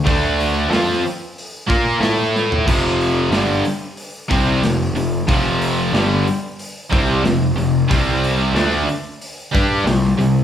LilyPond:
<<
  \new Staff \with { instrumentName = "Distorted electric guitar" } { \clef bass \time 4/4 \key f \lydian \tempo 4 = 92 <d a d'>4 <f c' f'>8 r4 <bes f' bes'>8 <a e' a'>4 | <f, c f>4 <g, d g>8 r4 <c g c'>8 <f, c>8 <f, c>8 | <f, c f>4 <g, d g>8 r4 <c g c'>8 <f, c>8 <f, c>8 | <c g c'>4 <d a d'>8 r4 <g d' g'>8 <c g>8 <c g>8 | }
  \new Staff \with { instrumentName = "Overdriven electric guitar" } { \clef bass \time 4/4 \key f \lydian <d a d'>4 <f c' f'>8 r4 <bes f' bes'>8 <a e' a'>4 | <f, c f>4 <g, d g>8 r4 <c g c'>8 <f, c>8 <f, c>8 | <f, c f>4 <g, d g>8 r4 <c g c'>8 <f, c>8 <f, c>8 | <c g c'>4 <d a d'>8 r4 <g d' g'>8 <c g>8 <c g>8 | }
  \new Staff \with { instrumentName = "Overdriven electric guitar" } { \clef bass \time 4/4 \key f \lydian <d a d'>4 <f c' f'>8 r4 <bes f' bes'>8 <a e' a'>4 | <f, c f>4 <g, d g>8 r4 <c g c'>8 <f, c>8 <f, c>8 | <f, c f>4 <g, d g>8 r4 <c g c'>8 <f, c>8 <f, c>8 | <c g c'>4 <d a d'>8 r4 <g d' g'>8 <c g>8 <c g>8 | }
  \new Staff \with { instrumentName = "Picked electric bass" } { \clef bass \time 4/4 \key f \lydian d,4 f,8 r4 bes,8 a,4 | f,,4 g,,8 r4 c,8 f,,8 f,,8 | f,,4 g,,8 r4 c,8 f,,8 f,,8 | c,4 d,8 r4 g,8 c,8 c,8 | }
  \new DrumStaff \with { instrumentName = "Drums" } \drummode { \time 4/4 <hho bd>8 hho8 <hho sn>8 hho8 hho8 <hho bd>8 <hho sn>8 sn16 tomfh16 | <cymc bd>8 hho8 <hho sn>8 hho8 hho8 <hho bd>8 <hho sn>8 hho8 | <hho bd>8 hho8 <hho sn>8 hho8 hho8 <hho bd>8 <hho sn>8 hho8 | <hho bd>8 hho8 <hho sn>8 hho8 hho8 <hho bd>8 <hho sn>16 sn16 hho8 | }
>>